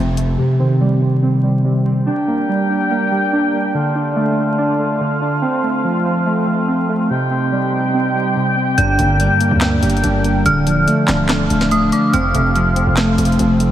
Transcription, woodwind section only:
2.06 5.39 D4 medium
2.06 3.73 G4 medium
2.06 3.73 A#4 medium
2.06 3.73 G5 medium
3.74 7.07 F4 medium
3.74 7.07 A4 medium
3.74 7.07 F5 medium
5.42 7.08 C4 medium
7.10 8.61 D#4 medium
7.10 10.42 G4 medium
7.10 8.61 C5 medium
7.10 10.42 G5 medium
8.78 12.10 D4 medium
8.78 10.44 A#4 medium
10.46 12.12 F4 medium
10.46 12.12 A4 medium
10.46 13.72 F5 medium
12.14 13.72 C4 medium
12.14 13.72 F4 medium
12.14 13.72 A4 medium

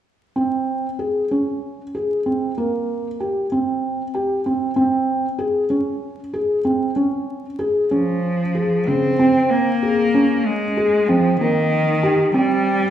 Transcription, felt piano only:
0.36 0.85 C4 medium
0.99 1.24 G#4 medium
1.31 1.81 C#4 soft
1.95 2.19 G#4 soft
2.26 2.51 C4 soft
2.58 3.07 A#3 medium
3.20 3.45 G4 medium
3.52 4.01 C4 medium
4.14 4.39 G4 medium
4.46 4.70 C4 medium
4.76 5.25 C4 medium
5.39 5.63 G#4 medium
5.70 6.19 C#4 medium
6.34 6.58 G#4 medium
6.65 6.89 C4 medium
6.96 7.45 C#4 medium
7.59 7.84 G#4 medium
7.91 8.41 C#4 medium
8.55 8.80 G#4 medium
8.87 9.12 C#3 medium
9.19 9.69 C4 medium
9.83 10.07 G#4 medium
10.14 10.63 C#4 medium
10.77 11.02 G#4 medium
11.09 11.33 C4 medium
11.41 11.89 A#3 medium
12.03 12.27 G4 medium
12.34 12.83 C4 medium

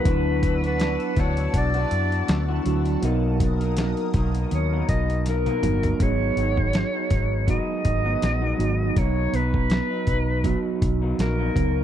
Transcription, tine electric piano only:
0.04 1.18 F#3 medium
0.04 1.19 D4 medium
0.04 1.19 E4 medium
0.04 1.19 B4 medium
2.65 2.94 F#3 loud
2.65 2.95 D4 medium
2.65 2.95 E4 medium
2.65 2.96 F#4 medium
3.02 4.16 F#3 loud
3.02 4.16 B3 medium
3.02 4.17 D#4 medium
3.02 4.17 A#4 loud
5.62 5.91 F#3 medium
5.62 5.92 B3 medium
5.62 5.92 D#4 medium
5.62 5.92 A#4 medium
5.99 7.13 F#3 medium
5.99 7.13 B3 medium
5.99 7.13 D#4 medium
5.99 7.14 G#4 medium
7.47 8.33 F#3 medium
7.47 8.34 B3 medium
7.47 8.34 D#4 medium
7.47 8.35 F#4 medium
8.57 8.88 F#3 medium
8.57 8.88 B3 medium
8.57 8.88 D#4 medium
8.57 8.89 F#4 medium
8.96 10.09 F#3 medium
8.96 10.09 B3 medium
8.96 10.10 D#4 medium
8.96 10.10 A#5 medium
10.44 11.30 F#3 medium
10.44 11.30 B3 medium
10.44 11.31 D#4 medium
10.44 11.31 F#4 loud
11.55 11.84 F#3 medium
11.55 11.84 B3 medium
11.55 11.84 D#4 medium
11.55 11.84 A#4 medium

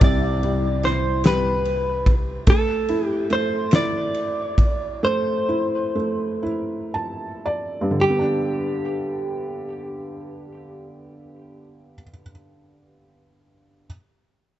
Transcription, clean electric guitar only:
0.04 0.85 D5 medium
0.85 1.22 C5 medium
1.27 2.14 B4 medium
2.50 3.06 A4 medium
3.06 3.27 G4 medium
3.33 3.74 C5 medium
3.76 5.04 D5 medium
5.05 6.91 C5 medium
8.01 12.12 G4 medium

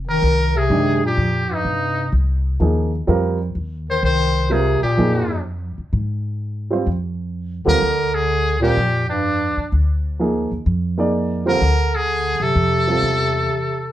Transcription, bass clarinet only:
0.07 0.57 D#3 medium
0.56 1.03 C3 medium
1.04 1.52 A#2 medium
1.51 2.13 G2 medium
3.90 4.03 D#3 medium
4.03 4.52 D#3 medium
4.51 4.83 C3 medium
4.83 5.42 A#2 medium
7.66 8.14 D3 medium
8.14 8.59 D3 medium
8.60 9.05 A#2 medium
9.08 9.67 G2 medium
11.46 11.95 D3 medium
11.95 12.43 D3 medium
12.42 13.92 C3 medium

